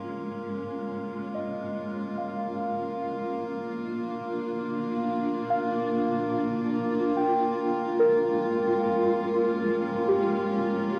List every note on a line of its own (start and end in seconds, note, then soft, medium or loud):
0.00 2.60 G#3 medium
0.00 10.99 A#3 medium
0.00 2.60 C#4 medium
0.00 10.99 F4 medium
1.35 2.40 D#5 soft
2.18 2.97 F5 soft
2.60 9.32 A#3 medium
3.01 7.59 D4 medium
5.50 6.56 F5 medium
7.17 7.97 G5 soft
7.58 10.99 G#3 medium
8.00 9.06 A#4 medium
8.09 10.99 C#4 medium
10.09 10.99 G4 medium